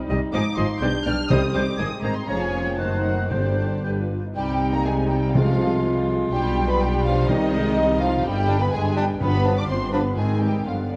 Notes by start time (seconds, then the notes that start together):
Already playing: G3 D#4
0.09 C2 C3 G3 D#4 G4 C5 D#5 D#6
0.32 G#1 G#2 F3 D#4 G#4 C5 D#5 D6 D#6
0.57 G#1 G#2 F3 D#4 G#4 C5 D#5 C6 D#6
0.80 B1 B2 G3 D4 G4 B4 D5 G6
1.06 B1 B2 G3 D4 G4 B4 D5 F6 G6
1.30 C2 C3 G3 C4 D#4 G4 C5 D#5 D#6 G6
1.54 C2 C3 G3 D#4 G4 C5 D#5 D6 G6
1.78 G#1 G#2 D#3 G#3 C4 D#4 G#4 C5 D#5 D#6 G#6
2.02 G#1 G#2 D#3 C4 D#4 G#4 C5 D#5 A#5 G#6
2.15 C6
2.26 F1 F2 F3 G#3 C#4 F4 G#4 C#5 A#5 G#6
2.40 G#5
2.52 A#3
2.66 G5
2.78 F#1 F#2 D#3 A3 C4 D#4 F#4 C5 A5 F#6
3.03 F#5
3.30 G1 G2 D3 G3 C4 D4 G4 C5 D5 G6
3.83 G1 G2 D3 G3 D4 G4 B4 G6
3.97 F4
4.24 D#4
4.35 C2 C3 G3 C4 D#4 G4 G5
4.73 A#3 A#4 A#5
4.84 G#3 G#4 G#5
5.09 G3 G4 G5
5.34 C3 F3 G#3 F4 F5
5.59 G#3
5.85 G3
6.08 F3
6.32 B1 B2 G3 D4 G4 G5
6.69 B3 B4 B5
6.81 G3 D4 G4 G5
7.05 F3 F4 F5
7.28 C2 C3 D#3 G3 D#4 D#5
7.52 G#3
7.76 G3 D#4
8.00 F3 F4 F5
8.23 G1 G2 G3 G4 G5
8.48 G3 B3 D4
8.60 B3 B4 B5
8.71 G1 G2 G#3 G#4 G#5
8.96 G3 B3 D4 G4 G5
9.20 G1 G2 B3 D4 F4 B4 B5
9.44 F3 D4 F4
9.57 D4 D5 D6
9.68 G1 G2 C4 C5 C6
9.92 F3 B3 D4 F4 B4 B5
10.16 G#1 G#2 D#3 G#3 C4 G#4 G#5
10.41 G3 C4 D#4 G4 G5
10.65 G1 G2 D3 F3 B3 D4 F4 F5
10.91 D3 B3 D4 D5